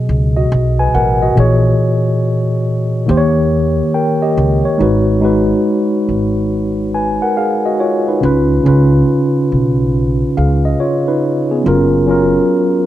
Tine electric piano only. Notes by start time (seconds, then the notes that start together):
0.36 F#4 D#5
0.79 B4 G#5
0.95 A#4 F#5
1.22 F#4 D#5
1.35 A#2 E3 G#4
1.40 C#5
3.06 D#3 A#3 G4
3.11 C5
3.17 C#5
3.94 A#4 G5
4.22 G4 D#5
4.65 C#5
4.78 G#3 D#4 F#4
4.82 B4
5.20 G#3 D#4 F#4
5.25 B4
6.94 B4 G#5
7.22 A#4 F#5
7.37 G#4 F5
7.66 F#4 D#5
7.80 F4 C#5
8.08 D#4 B4
8.21 C#3 C#4 F4
8.25 B4
8.64 C#3 C#4 F4
8.68 B4
10.37 G#4 F5
10.65 D#5
10.80 F4 C#5
11.08 D#4 B4
11.51 B3 G#4
11.63 F#3 C#4 F4
11.68 A#4
12.06 F#3 C#4 F4
12.11 A#4